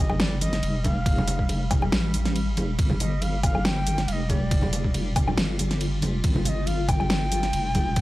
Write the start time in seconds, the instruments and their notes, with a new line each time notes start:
Already playing: wobble bass G1, ambient pad G3
0.00 ney D#5
0.09 high conga, low woodblock
0.20 ney D5, snare, ride
0.41 ney D#5, closed hi-hat, high conga
0.53 snare, closed hi-hat
0.63 wobble bass F1, ride
0.84 ney F5, kick, open hi-hat, high conga
1.06 kick, ride
1.18 high conga, low conga
1.28 closed hi-hat, low conga
1.39 kick
1.49 ride, high conga
1.71 kick, closed hi-hat, low conga, low woodblock
1.82 high conga, low woodblock
1.92 wobble bass A1, snare, ride
2.14 closed hi-hat, high conga
2.25 snare, closed hi-hat
2.36 ride
2.57 open hi-hat, high conga
2.79 wobble bass G1, ambient pad F4, kick, ride
2.90 high conga, low conga
3.00 ney D#5, closed hi-hat, low conga
3.21 ney F5, ride, high conga
3.43 ney F5, kick, closed hi-hat, low conga, low woodblock
3.54 high conga, low woodblock
3.65 ney G5, snare, ride
3.87 closed hi-hat, high conga
3.98 snare, closed hi-hat
4.08 wobble bass F1, ney F5, ride
4.12 ney D#5
4.30 ney D5, kick, open hi-hat, high conga
4.51 kick, ride
4.62 high conga, low conga
4.73 closed hi-hat, low conga
4.84 kick
4.94 ride, high conga
5.16 kick, closed hi-hat, low conga, low woodblock
5.28 high conga, low woodblock
5.37 wobble bass G1, snare, ride
5.59 closed hi-hat, high conga
5.71 snare, closed hi-hat
5.81 ride
5.97 wobble bass F#1
6.02 open hi-hat, high conga
6.24 wobble bass G1, kick, ride
6.35 high conga, low conga
6.45 ney D#5 F5, closed hi-hat, low conga
6.66 ney F5, ride, high conga
6.88 ney G5, kick, closed hi-hat, low conga, low woodblock
7.00 high conga, low woodblock
7.10 snare, ride
7.32 closed hi-hat, high conga
7.43 snare, closed hi-hat
7.53 wobble bass F1, ride
7.75 kick, open hi-hat, high conga
7.96 kick, ride